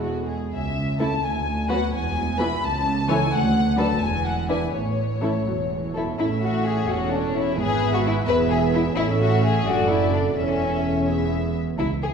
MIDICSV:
0, 0, Header, 1, 6, 480
1, 0, Start_track
1, 0, Key_signature, 3, "major"
1, 0, Tempo, 465477
1, 542, Time_signature, 6, 3, 24, 8
1, 3892, Tempo, 479233
1, 6772, Tempo, 466926
1, 12412, End_track
2, 0, Start_track
2, 0, Title_t, "Violin section"
2, 0, Program_c, 0, 48
2, 546, Note_on_c, 0, 76, 59
2, 992, Note_off_c, 0, 76, 0
2, 1031, Note_on_c, 0, 81, 58
2, 1269, Note_off_c, 0, 81, 0
2, 1271, Note_on_c, 0, 80, 58
2, 1741, Note_on_c, 0, 78, 62
2, 1749, Note_off_c, 0, 80, 0
2, 1978, Note_off_c, 0, 78, 0
2, 1995, Note_on_c, 0, 80, 70
2, 2457, Note_off_c, 0, 80, 0
2, 2462, Note_on_c, 0, 83, 73
2, 2700, Note_off_c, 0, 83, 0
2, 2706, Note_on_c, 0, 81, 76
2, 3180, Note_off_c, 0, 81, 0
2, 3186, Note_on_c, 0, 80, 78
2, 3419, Note_off_c, 0, 80, 0
2, 3420, Note_on_c, 0, 78, 81
2, 3895, Note_off_c, 0, 78, 0
2, 3900, Note_on_c, 0, 81, 67
2, 4127, Note_off_c, 0, 81, 0
2, 4129, Note_on_c, 0, 80, 74
2, 4367, Note_off_c, 0, 80, 0
2, 4372, Note_on_c, 0, 78, 62
2, 4609, Note_off_c, 0, 78, 0
2, 4612, Note_on_c, 0, 80, 55
2, 4846, Note_off_c, 0, 80, 0
2, 4859, Note_on_c, 0, 73, 48
2, 6038, Note_off_c, 0, 73, 0
2, 6312, Note_on_c, 0, 76, 45
2, 6979, Note_off_c, 0, 76, 0
2, 7013, Note_on_c, 0, 73, 46
2, 7728, Note_on_c, 0, 76, 55
2, 7734, Note_off_c, 0, 73, 0
2, 8430, Note_off_c, 0, 76, 0
2, 8447, Note_on_c, 0, 76, 56
2, 9143, Note_off_c, 0, 76, 0
2, 9160, Note_on_c, 0, 76, 59
2, 9829, Note_off_c, 0, 76, 0
2, 9862, Note_on_c, 0, 74, 54
2, 10589, Note_off_c, 0, 74, 0
2, 10591, Note_on_c, 0, 76, 47
2, 11304, Note_off_c, 0, 76, 0
2, 11321, Note_on_c, 0, 76, 47
2, 11831, Note_off_c, 0, 76, 0
2, 12412, End_track
3, 0, Start_track
3, 0, Title_t, "Violin section"
3, 0, Program_c, 1, 48
3, 24, Note_on_c, 1, 66, 39
3, 279, Note_off_c, 1, 66, 0
3, 292, Note_on_c, 1, 68, 35
3, 534, Note_off_c, 1, 68, 0
3, 1029, Note_on_c, 1, 64, 40
3, 1032, Note_on_c, 1, 69, 40
3, 1138, Note_off_c, 1, 64, 0
3, 1140, Note_off_c, 1, 69, 0
3, 1740, Note_on_c, 1, 66, 47
3, 1742, Note_on_c, 1, 71, 49
3, 1855, Note_off_c, 1, 66, 0
3, 1855, Note_off_c, 1, 71, 0
3, 2468, Note_on_c, 1, 71, 54
3, 2469, Note_off_c, 1, 71, 0
3, 2469, Note_on_c, 1, 71, 52
3, 2576, Note_off_c, 1, 71, 0
3, 3176, Note_on_c, 1, 73, 54
3, 3178, Note_on_c, 1, 69, 53
3, 3286, Note_off_c, 1, 73, 0
3, 3287, Note_off_c, 1, 69, 0
3, 3896, Note_on_c, 1, 71, 53
3, 3904, Note_on_c, 1, 69, 52
3, 4003, Note_off_c, 1, 71, 0
3, 4007, Note_off_c, 1, 69, 0
3, 4604, Note_on_c, 1, 64, 37
3, 4606, Note_on_c, 1, 71, 40
3, 4717, Note_off_c, 1, 64, 0
3, 4719, Note_off_c, 1, 71, 0
3, 5342, Note_on_c, 1, 69, 37
3, 5343, Note_on_c, 1, 64, 35
3, 5448, Note_off_c, 1, 69, 0
3, 5449, Note_off_c, 1, 64, 0
3, 6084, Note_on_c, 1, 69, 32
3, 6088, Note_on_c, 1, 64, 32
3, 6184, Note_off_c, 1, 69, 0
3, 6186, Note_off_c, 1, 64, 0
3, 6312, Note_on_c, 1, 64, 72
3, 6392, Note_off_c, 1, 64, 0
3, 6552, Note_on_c, 1, 66, 64
3, 6775, Note_off_c, 1, 66, 0
3, 6783, Note_on_c, 1, 68, 63
3, 7018, Note_off_c, 1, 68, 0
3, 7027, Note_on_c, 1, 66, 59
3, 7260, Note_off_c, 1, 66, 0
3, 7260, Note_on_c, 1, 62, 59
3, 7497, Note_off_c, 1, 62, 0
3, 7507, Note_on_c, 1, 64, 66
3, 7741, Note_off_c, 1, 64, 0
3, 7749, Note_on_c, 1, 68, 84
3, 8095, Note_off_c, 1, 68, 0
3, 8098, Note_on_c, 1, 66, 72
3, 8145, Note_off_c, 1, 66, 0
3, 8223, Note_on_c, 1, 64, 77
3, 8305, Note_off_c, 1, 64, 0
3, 8452, Note_on_c, 1, 71, 90
3, 8534, Note_off_c, 1, 71, 0
3, 8680, Note_on_c, 1, 68, 72
3, 8762, Note_off_c, 1, 68, 0
3, 8930, Note_on_c, 1, 64, 68
3, 9012, Note_off_c, 1, 64, 0
3, 9158, Note_on_c, 1, 64, 88
3, 9241, Note_off_c, 1, 64, 0
3, 9409, Note_on_c, 1, 66, 75
3, 9634, Note_off_c, 1, 66, 0
3, 9651, Note_on_c, 1, 68, 71
3, 9874, Note_off_c, 1, 68, 0
3, 9891, Note_on_c, 1, 66, 66
3, 10120, Note_off_c, 1, 66, 0
3, 10124, Note_on_c, 1, 64, 66
3, 10356, Note_on_c, 1, 62, 58
3, 10357, Note_off_c, 1, 64, 0
3, 10438, Note_off_c, 1, 62, 0
3, 10595, Note_on_c, 1, 61, 64
3, 11306, Note_off_c, 1, 61, 0
3, 12056, Note_on_c, 1, 64, 76
3, 12138, Note_off_c, 1, 64, 0
3, 12307, Note_on_c, 1, 68, 67
3, 12389, Note_off_c, 1, 68, 0
3, 12412, End_track
4, 0, Start_track
4, 0, Title_t, "Viola section"
4, 0, Program_c, 2, 48
4, 0, Note_on_c, 2, 56, 36
4, 0, Note_on_c, 2, 59, 41
4, 326, Note_off_c, 2, 56, 0
4, 335, Note_off_c, 2, 59, 0
4, 1029, Note_on_c, 2, 61, 42
4, 1034, Note_on_c, 2, 57, 42
4, 1139, Note_off_c, 2, 61, 0
4, 1141, Note_off_c, 2, 57, 0
4, 1750, Note_on_c, 2, 59, 49
4, 1754, Note_on_c, 2, 54, 50
4, 1860, Note_off_c, 2, 59, 0
4, 1862, Note_off_c, 2, 54, 0
4, 2470, Note_on_c, 2, 52, 57
4, 2471, Note_on_c, 2, 59, 54
4, 2576, Note_off_c, 2, 52, 0
4, 2577, Note_off_c, 2, 59, 0
4, 3186, Note_on_c, 2, 52, 57
4, 3187, Note_on_c, 2, 64, 58
4, 3292, Note_off_c, 2, 52, 0
4, 3292, Note_off_c, 2, 64, 0
4, 3893, Note_on_c, 2, 54, 51
4, 3893, Note_on_c, 2, 62, 53
4, 4002, Note_off_c, 2, 54, 0
4, 4002, Note_off_c, 2, 62, 0
4, 4607, Note_on_c, 2, 62, 44
4, 4608, Note_on_c, 2, 52, 43
4, 4719, Note_off_c, 2, 62, 0
4, 4720, Note_off_c, 2, 52, 0
4, 5339, Note_on_c, 2, 61, 37
4, 5340, Note_on_c, 2, 52, 34
4, 5447, Note_off_c, 2, 61, 0
4, 5448, Note_off_c, 2, 52, 0
4, 5577, Note_on_c, 2, 54, 45
4, 5657, Note_off_c, 2, 54, 0
4, 5809, Note_on_c, 2, 52, 32
4, 6050, Note_off_c, 2, 52, 0
4, 6059, Note_on_c, 2, 54, 38
4, 6289, Note_on_c, 2, 69, 49
4, 6294, Note_on_c, 2, 61, 44
4, 6299, Note_off_c, 2, 54, 0
4, 6970, Note_off_c, 2, 61, 0
4, 7019, Note_on_c, 2, 61, 50
4, 7688, Note_off_c, 2, 69, 0
4, 7723, Note_off_c, 2, 61, 0
4, 7745, Note_on_c, 2, 71, 54
4, 7746, Note_on_c, 2, 59, 51
4, 8439, Note_off_c, 2, 59, 0
4, 8450, Note_on_c, 2, 68, 60
4, 8453, Note_off_c, 2, 71, 0
4, 8456, Note_on_c, 2, 59, 64
4, 9147, Note_off_c, 2, 59, 0
4, 9150, Note_on_c, 2, 69, 55
4, 9152, Note_on_c, 2, 61, 60
4, 9158, Note_off_c, 2, 68, 0
4, 9824, Note_off_c, 2, 69, 0
4, 9826, Note_off_c, 2, 61, 0
4, 9869, Note_on_c, 2, 62, 59
4, 9871, Note_on_c, 2, 69, 58
4, 10569, Note_off_c, 2, 69, 0
4, 10581, Note_on_c, 2, 69, 50
4, 10582, Note_on_c, 2, 61, 47
4, 10592, Note_off_c, 2, 62, 0
4, 11298, Note_off_c, 2, 69, 0
4, 11299, Note_off_c, 2, 61, 0
4, 11312, Note_on_c, 2, 59, 48
4, 11317, Note_on_c, 2, 68, 52
4, 11837, Note_off_c, 2, 59, 0
4, 11839, Note_off_c, 2, 68, 0
4, 12412, End_track
5, 0, Start_track
5, 0, Title_t, "Cello section"
5, 0, Program_c, 3, 48
5, 0, Note_on_c, 3, 40, 41
5, 305, Note_off_c, 3, 40, 0
5, 539, Note_on_c, 3, 37, 45
5, 1142, Note_off_c, 3, 37, 0
5, 1258, Note_on_c, 3, 38, 42
5, 1862, Note_off_c, 3, 38, 0
5, 1984, Note_on_c, 3, 40, 52
5, 2579, Note_off_c, 3, 40, 0
5, 2701, Note_on_c, 3, 37, 57
5, 3295, Note_off_c, 3, 37, 0
5, 3422, Note_on_c, 3, 38, 63
5, 4013, Note_off_c, 3, 38, 0
5, 4132, Note_on_c, 3, 40, 56
5, 4729, Note_off_c, 3, 40, 0
5, 4846, Note_on_c, 3, 45, 41
5, 5449, Note_off_c, 3, 45, 0
5, 5573, Note_on_c, 3, 40, 38
5, 6179, Note_off_c, 3, 40, 0
5, 6298, Note_on_c, 3, 45, 46
5, 6972, Note_off_c, 3, 45, 0
5, 7005, Note_on_c, 3, 40, 54
5, 7716, Note_off_c, 3, 40, 0
5, 7729, Note_on_c, 3, 44, 57
5, 8442, Note_on_c, 3, 40, 64
5, 8445, Note_off_c, 3, 44, 0
5, 9140, Note_off_c, 3, 40, 0
5, 9147, Note_on_c, 3, 45, 57
5, 9823, Note_off_c, 3, 45, 0
5, 9857, Note_on_c, 3, 42, 52
5, 10583, Note_on_c, 3, 40, 49
5, 10586, Note_off_c, 3, 42, 0
5, 11811, Note_off_c, 3, 40, 0
5, 12047, Note_on_c, 3, 37, 61
5, 12412, Note_off_c, 3, 37, 0
5, 12412, End_track
6, 0, Start_track
6, 0, Title_t, "Double bass section"
6, 0, Program_c, 4, 48
6, 0, Note_on_c, 4, 28, 42
6, 305, Note_off_c, 4, 28, 0
6, 544, Note_on_c, 4, 37, 46
6, 1145, Note_off_c, 4, 37, 0
6, 1260, Note_on_c, 4, 38, 46
6, 1863, Note_off_c, 4, 38, 0
6, 1987, Note_on_c, 4, 28, 57
6, 2580, Note_off_c, 4, 28, 0
6, 2703, Note_on_c, 4, 37, 58
6, 3297, Note_off_c, 4, 37, 0
6, 3420, Note_on_c, 4, 38, 60
6, 4012, Note_off_c, 4, 38, 0
6, 4131, Note_on_c, 4, 28, 55
6, 4729, Note_off_c, 4, 28, 0
6, 4843, Note_on_c, 4, 33, 41
6, 5448, Note_off_c, 4, 33, 0
6, 5566, Note_on_c, 4, 28, 37
6, 6176, Note_off_c, 4, 28, 0
6, 6294, Note_on_c, 4, 33, 50
6, 6970, Note_off_c, 4, 33, 0
6, 7012, Note_on_c, 4, 28, 49
6, 7719, Note_off_c, 4, 28, 0
6, 7740, Note_on_c, 4, 32, 55
6, 8447, Note_on_c, 4, 28, 65
6, 8450, Note_off_c, 4, 32, 0
6, 9142, Note_off_c, 4, 28, 0
6, 9151, Note_on_c, 4, 33, 58
6, 9825, Note_off_c, 4, 33, 0
6, 9867, Note_on_c, 4, 30, 59
6, 10579, Note_on_c, 4, 28, 48
6, 10591, Note_off_c, 4, 30, 0
6, 11809, Note_off_c, 4, 28, 0
6, 12046, Note_on_c, 4, 37, 59
6, 12412, Note_off_c, 4, 37, 0
6, 12412, End_track
0, 0, End_of_file